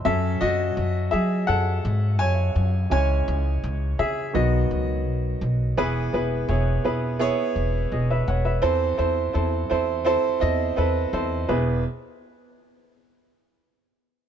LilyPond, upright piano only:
<<
  \new Staff \with { instrumentName = "Upright piano" } { \time 4/4 \key e \major \tempo 4 = 84 << { <a' e''>8 <fis' dis''>4 <gis' e''>8 <a' fis''>4 <cis'' gis''>4 | <cis'' gis''>4. <gis' e''>8 <fis' dis''>4. r8 | r2. <gis' dis''>16 <b' e''>16 <cis'' fis''>16 <b' e''>16~ | <b' e''>16 r2. r8. |
r1 | } \\ { r1 | r1 | <b e' gis' b'>8 <b e' gis' b'>8 <b e' gis' cis''>8 <b e' gis' b'>8 <b e' gis' cis''>8 r4. | <c' e' a' c''>8 <c' e' a' c''>8 <c' e' a' c''>8 <c' e' a' c''>8 <c' e' a' c''>8 <c' e' a' dis''>8 <c' e' a' b'>8 <c' e' a' c''>8 |
<b e' gis' b'>8 r2. r8 | } >> }
  \new Staff \with { instrumentName = "Upright piano" } { \clef bass \time 4/4 \key e \major <fis cis'>1 | <e gis cis'>4. r8 <dis fis b>8 r4. | e4. r2 r8 | e4. r2 r8 |
e,8 r2. r8 | }
>>